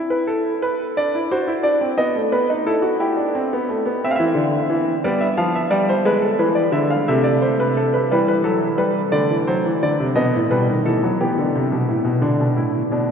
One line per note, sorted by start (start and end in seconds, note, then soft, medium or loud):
0.00 0.94 E4 medium
0.10 0.27 B4 medium
0.27 0.49 A4 medium
0.62 0.84 B4 medium
0.97 1.13 D4 medium
0.97 1.18 D5 medium
1.15 1.31 E4 medium
1.31 1.48 F#4 medium
1.31 1.52 C5 medium
1.47 1.64 E4 medium
1.63 1.80 D4 medium
1.63 1.85 D5 medium
1.81 1.98 C4 medium
1.97 2.14 B3 medium
1.97 2.19 D#5 medium
2.15 2.32 A3 medium
2.32 2.49 B3 medium
2.32 2.53 B4 medium
2.50 2.66 D#4 medium
2.66 2.83 E4 medium
2.66 2.88 A4 medium
2.82 2.99 F#4 medium
3.00 3.17 E4 medium
3.00 4.00 G4 medium
3.17 3.34 D4 medium
3.35 3.52 C4 medium
3.53 3.69 B3 medium
3.69 3.86 A3 medium
3.86 4.03 B3 medium
4.04 5.03 C4 medium
4.04 4.11 E5 medium
4.11 4.18 F5 medium
4.16 4.36 E3 medium
4.16 5.02 E5 medium
4.35 4.57 D3 medium
4.69 4.91 E3 medium
5.04 5.26 G3 medium
5.04 7.05 B3 medium
5.04 5.21 D5 medium
5.21 5.38 E5 medium
5.37 5.59 F3 medium
5.37 5.54 F5 medium
5.56 5.72 E5 medium
5.70 5.92 G3 medium
5.70 5.88 D5 medium
5.89 6.06 C5 medium
6.05 6.27 G#3 medium
6.05 6.23 B4 medium
6.22 6.39 A4 medium
6.39 6.61 E3 medium
6.39 6.57 B4 medium
6.55 6.73 D5 medium
6.72 6.94 D3 medium
6.72 6.90 E5 medium
6.90 7.08 F5 medium
7.08 8.08 C3 medium
7.08 8.08 A3 medium
7.08 7.25 E5 medium
7.24 7.41 D5 medium
7.42 7.59 C5 medium
7.60 7.76 B4 medium
7.77 7.94 A4 medium
7.94 8.10 B4 medium
8.11 9.12 E3 medium
8.11 8.33 G3 medium
8.11 8.27 B4 medium
8.28 8.45 B4 medium
8.44 8.66 F#3 medium
8.44 8.66 A4 medium
8.78 9.00 G3 medium
8.78 9.00 B4 medium
9.12 9.30 D3 medium
9.12 10.13 A3 medium
9.12 9.34 D5 medium
9.30 9.47 E3 medium
9.47 9.65 F#3 medium
9.47 9.69 C5 medium
9.65 9.82 E3 medium
9.83 9.99 D3 medium
9.83 10.04 D5 medium
10.00 10.17 C3 medium
10.15 10.33 B2 medium
10.15 10.37 B3 medium
10.15 10.37 D#5 medium
10.35 10.51 A2 medium
10.51 10.68 B2 medium
10.51 10.73 G3 medium
10.51 10.72 B4 medium
10.70 10.86 D#3 medium
10.85 11.03 E3 medium
10.85 11.07 A3 medium
10.85 11.07 A4 medium
11.03 11.20 F#3 medium
11.20 11.37 E3 medium
11.20 12.21 B3 medium
11.20 12.21 G4 medium
11.38 11.55 D3 medium
11.56 11.72 C3 medium
11.72 11.89 B2 medium
11.89 12.06 A2 medium
12.04 12.22 B2 medium
12.22 12.39 D3 medium
12.22 12.44 D4 medium
12.40 12.57 B2 medium
12.56 12.78 A2 medium
12.56 12.79 E4 medium
12.92 13.11 B2 medium
12.92 13.11 D4 medium